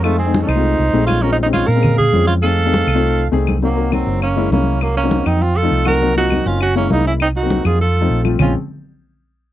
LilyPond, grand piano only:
\new Staff \with { instrumentName = "Grand piano" } { \time 4/4 \key bes \minor \tempo 4 = 201 <gis a c' ees'>8 r16 <gis a c' ees'>8. r16 <gis a c' f'>8. r8 <gis a c' ees'>8. r16 | <aes c' des' f'>8 r16 <aes c' des' ees'>8. r16 <aes c' des' aes'>8. r8 <aes c' des' f'>8. r16 | <a c' ees' gis'>8 r16 <a c' ees' gis'>8. r16 <a c' ees' f'>8. r8 <a c' ees' gis'>8. r16 | <bes c' ees' ges'>16 r16 <bes c' ees' ges'>16 r16 <bes c' ees' ges'>4 r8 <aes bes des' fes'>16 r16 <aes bes des' fes'>4 |
r8. <ges bes c' ees'>4~ <ges bes c' ees'>16 r8. <f a c' ees'>8 r16 <f a c' ees'>16 r16 | <ges bes c' ees'>16 r16 <ges bes c' f'>16 r16 <ges bes c' ees'>4 r8 <aes bes des' fes'>16 r16 <aes bes des' fes'>4 | r8. <ges bes c' ees'>4~ <ges bes c' ees'>16 r8. <f a c' ees'>8 r16 <f a c' f'>16 r16 | <f aes c' des'>8 r2. r8 | }